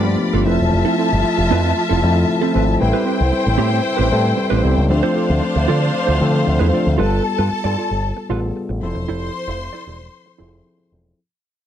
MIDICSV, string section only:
0, 0, Header, 1, 2, 480
1, 0, Start_track
1, 0, Tempo, 523104
1, 663, Time_signature, 4, 2, 24, 8
1, 10707, End_track
2, 0, Start_track
2, 0, Title_t, "String section"
2, 0, Program_c, 0, 48
2, 0, Note_on_c, 0, 65, 83
2, 0, Note_on_c, 0, 74, 95
2, 0, Note_on_c, 0, 83, 93
2, 387, Note_off_c, 0, 83, 0
2, 388, Note_off_c, 0, 65, 0
2, 389, Note_off_c, 0, 74, 0
2, 425, Note_on_c, 0, 65, 95
2, 427, Note_on_c, 0, 76, 96
2, 430, Note_on_c, 0, 81, 110
2, 2544, Note_off_c, 0, 65, 0
2, 2545, Note_off_c, 0, 76, 0
2, 2546, Note_off_c, 0, 81, 0
2, 2581, Note_on_c, 0, 64, 81
2, 2581, Note_on_c, 0, 72, 97
2, 2582, Note_on_c, 0, 79, 104
2, 4461, Note_off_c, 0, 64, 0
2, 4461, Note_off_c, 0, 72, 0
2, 4462, Note_off_c, 0, 79, 0
2, 4494, Note_on_c, 0, 62, 85
2, 4495, Note_on_c, 0, 72, 93
2, 4497, Note_on_c, 0, 77, 91
2, 6377, Note_off_c, 0, 62, 0
2, 6378, Note_off_c, 0, 72, 0
2, 6379, Note_off_c, 0, 77, 0
2, 6417, Note_on_c, 0, 69, 100
2, 6418, Note_on_c, 0, 81, 114
2, 7828, Note_off_c, 0, 69, 0
2, 7829, Note_off_c, 0, 81, 0
2, 8097, Note_on_c, 0, 72, 108
2, 8101, Note_on_c, 0, 84, 126
2, 9985, Note_off_c, 0, 72, 0
2, 9987, Note_off_c, 0, 84, 0
2, 10707, End_track
0, 0, End_of_file